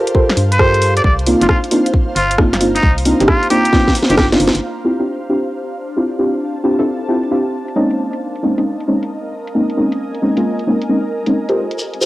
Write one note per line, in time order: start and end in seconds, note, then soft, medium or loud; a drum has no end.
0.00 8.58 C5 medium
0.00 9.44 F5 medium
0.00 1.04 A5 medium
0.07 closed hi-hat medium
0.15 0.23 F4 medium
0.15 0.23 G4 medium
0.15 0.23 A4 medium
0.15 0.23 A#4 medium
0.15 0.23 C5 medium
0.15 kick loud
0.29 snare medium
0.37 1.01 G2 medium
0.37 open hi-hat loud
0.52 0.94 C5 loud
0.52 closed hi-hat medium
0.59 1.03 F4 loud
0.59 1.03 G4 medium
0.59 1.03 A4 medium
0.59 1.03 A#4 medium
0.59 1.03 C5 loud
0.59 kick loud
0.59 cross-stick loud
0.74 closed hi-hat medium
0.82 open hi-hat loud
0.97 1.01 D5 medium
0.97 closed hi-hat medium
1.04 1.34 C2 medium
1.04 1.14 D5 medium
1.04 kick loud
1.19 closed hi-hat soft
1.26 1.38 A#3 medium
1.26 1.38 C4 medium
1.26 1.38 D4 medium
1.26 1.38 D#4 medium
1.26 1.38 F4 loud
1.26 open hi-hat loud
1.41 1.47 G1 loud
1.41 1.46 A#3 medium
1.41 1.46 C4 medium
1.41 1.46 D4 medium
1.41 1.46 D#4 medium
1.41 1.46 F4 medium
1.41 snare soft
1.41 closed hi-hat medium
1.49 1.58 F4 medium
1.49 kick loud
1.49 cross-stick loud
1.64 closed hi-hat soft
1.69 1.80 A#3 medium
1.69 1.80 C4 medium
1.69 1.80 D4 medium
1.69 1.80 D#4 medium
1.69 1.80 F4 loud
1.69 4.62 A#5 medium
1.69 open hi-hat loud
1.86 closed hi-hat medium
1.94 kick loud
2.16 2.80 G1 medium
2.16 2.37 F4 medium
2.16 open hi-hat loud
2.31 closed hi-hat medium
2.38 2.47 A#3 medium
2.38 2.47 C4 medium
2.38 2.47 D4 medium
2.38 2.47 D#4 medium
2.38 2.47 F4 medium
2.38 kick loud
2.38 cross-stick loud
2.53 snare medium
2.53 closed hi-hat medium
2.61 2.69 A#3 medium
2.61 2.69 C4 medium
2.61 2.69 D4 medium
2.61 2.69 D#4 medium
2.61 2.69 F4 medium
2.61 open hi-hat loud
2.76 2.95 D#4 medium
2.76 closed hi-hat medium
2.83 3.14 C2 loud
2.83 kick loud
2.98 open hi-hat medium
3.06 3.18 A#3 medium
3.06 3.18 C4 medium
3.06 3.18 D4 medium
3.06 3.18 D#4 medium
3.06 3.18 F4 loud
3.06 open hi-hat loud
3.20 3.26 G1 loud
3.20 3.25 A#3 loud
3.20 3.25 C4 medium
3.20 3.25 D4 medium
3.20 3.25 D#4 medium
3.20 3.25 G4 loud
3.20 snare soft
3.20 closed hi-hat medium
3.28 3.49 F4 loud
3.28 kick loud
3.28 cross-stick loud
3.43 closed hi-hat soft
3.50 3.59 A#3 medium
3.50 3.59 C4 medium
3.50 3.59 D4 medium
3.50 3.59 D#4 medium
3.50 3.59 F4 medium
3.50 3.95 G4 medium
3.50 open hi-hat loud
3.65 closed hi-hat medium
3.73 3.81 A#3 medium
3.73 3.81 C4 medium
3.73 3.81 D4 medium
3.73 3.81 D#4 medium
3.73 3.81 F4 medium
3.73 kick loud
3.73 snare medium
3.88 kick medium
3.88 snare medium
3.95 open hi-hat loud
4.03 snare medium
4.10 4.36 G1 loud
4.10 4.17 A#3 loud
4.10 4.17 C4 medium
4.10 4.17 D4 medium
4.10 4.17 D#4 medium
4.10 4.17 F4 loud
4.10 4.15 G4 medium
4.10 closed hi-hat medium
4.17 4.27 G4 medium
4.17 kick loud
4.17 cross-stick loud
4.17 snare medium
4.32 4.61 A#3 medium
4.32 4.61 C4 medium
4.32 4.61 D4 medium
4.32 4.61 D#4 medium
4.32 4.61 F4 loud
4.32 snare medium
4.32 closed hi-hat medium
4.40 4.50 G1 loud
4.40 open hi-hat loud
4.47 snare loud
4.55 4.60 G1 medium
4.55 closed hi-hat medium
4.62 7.98 D4 medium
4.77 closed hi-hat soft
4.85 4.96 C4 medium
4.85 4.96 D4 medium
4.85 4.96 E4 medium
4.85 4.96 F4 medium
4.85 4.96 G4 medium
5.00 5.04 C4 medium
5.00 5.04 D4 medium
5.00 5.04 E4 medium
5.00 5.04 F4 medium
5.00 5.04 G4 medium
5.00 closed hi-hat medium
5.29 5.38 C4 medium
5.29 5.38 D4 medium
5.29 5.38 E4 medium
5.29 5.38 F4 medium
5.29 5.38 G4 medium
5.44 closed hi-hat medium
5.85 7.98 A5 medium
5.85 closed hi-hat medium
5.97 6.05 C4 medium
5.97 6.05 D4 medium
5.97 6.05 E4 medium
5.97 6.05 F4 medium
5.97 6.05 G4 medium
6.12 closed hi-hat soft
6.19 6.27 C4 medium
6.19 6.27 D4 medium
6.19 6.27 E4 medium
6.19 6.27 F4 medium
6.19 6.27 G4 medium
6.34 closed hi-hat medium
6.56 closed hi-hat soft
6.64 6.76 C4 medium
6.64 6.76 D4 medium
6.64 6.76 E4 medium
6.64 6.76 F4 medium
6.64 6.76 G4 medium
6.79 6.83 C4 medium
6.79 6.83 D4 medium
6.79 6.83 E4 medium
6.79 6.83 F4 medium
6.79 6.83 A4 loud
6.79 closed hi-hat medium
7.01 closed hi-hat soft
7.09 7.17 C4 medium
7.09 7.17 D4 medium
7.09 7.17 E4 medium
7.09 7.17 F4 medium
7.09 7.17 G4 medium
7.23 closed hi-hat medium
7.31 7.39 C4 medium
7.31 7.39 D4 medium
7.31 7.39 E4 medium
7.31 7.39 F4 medium
7.31 7.39 G4 medium
7.68 closed hi-hat medium
7.76 8.41 G#3 medium
7.76 8.41 A#3 medium
7.76 8.41 C4 medium
7.76 8.41 C#4 medium
7.76 8.41 D#4 loud
7.91 closed hi-hat soft
7.98 12.05 A#4 medium
8.10 11.56 D#5 medium
8.10 closed hi-hat medium
8.35 closed hi-hat soft
8.43 8.54 G#3 medium
8.43 8.54 A#3 medium
8.43 8.54 C4 medium
8.43 8.54 C#4 medium
8.43 8.54 D#4 medium
8.58 8.62 G#3 medium
8.58 8.62 A#3 medium
8.58 8.62 C4 medium
8.58 8.62 C#4 medium
8.58 8.62 D#4 medium
8.58 closed hi-hat medium
8.80 closed hi-hat soft
8.88 8.96 G#3 medium
8.88 8.96 A#3 medium
8.88 8.96 C4 medium
8.88 8.96 C#4 medium
8.88 8.96 D#4 loud
9.03 closed hi-hat medium
9.29 11.56 G#5 medium
9.47 closed hi-hat medium
9.55 9.63 G#3 medium
9.55 9.63 A#3 medium
9.55 9.63 C4 medium
9.55 9.63 C#4 medium
9.55 9.63 D#4 medium
9.70 closed hi-hat soft
9.77 9.86 G#3 medium
9.77 9.86 A#3 medium
9.77 9.86 C4 medium
9.77 9.86 C#4 medium
9.77 9.86 D#4 medium
9.92 closed hi-hat medium
10.15 closed hi-hat soft
10.22 10.35 G#3 medium
10.22 10.35 A#3 medium
10.22 10.35 C4 medium
10.22 10.35 C#4 medium
10.22 10.35 D#4 medium
10.37 10.41 G#3 medium
10.37 10.41 A#3 medium
10.37 10.41 C4 medium
10.37 10.41 C#4 medium
10.37 10.41 F4 loud
10.37 closed hi-hat medium
10.59 closed hi-hat soft
10.67 10.75 G#3 medium
10.67 10.75 A#3 medium
10.67 10.75 C4 medium
10.67 10.75 C#4 medium
10.67 10.75 D#4 medium
10.82 closed hi-hat medium
10.89 10.98 G#3 medium
10.89 10.98 A#3 medium
10.89 10.98 C4 medium
10.89 10.98 C#4 medium
10.89 10.98 D#4 medium
11.26 11.33 G#3 medium
11.26 11.33 A#3 medium
11.26 11.33 C4 medium
11.26 11.33 C#4 medium
11.26 11.33 D#4 loud
11.26 closed hi-hat medium
11.49 11.99 F4 medium
11.49 11.99 G4 medium
11.49 11.99 A4 medium
11.49 11.99 A#4 medium
11.49 11.99 C5 medium
11.49 closed hi-hat soft
11.57 12.05 G4 medium
11.71 closed hi-hat medium
11.77 12.05 C5 medium
11.77 shekere soft
11.94 closed hi-hat soft
12.01 12.05 F4 medium
12.01 12.05 G4 medium
12.01 12.05 A4 medium
12.01 12.05 A#4 medium
12.01 12.05 C5 medium
12.01 shekere medium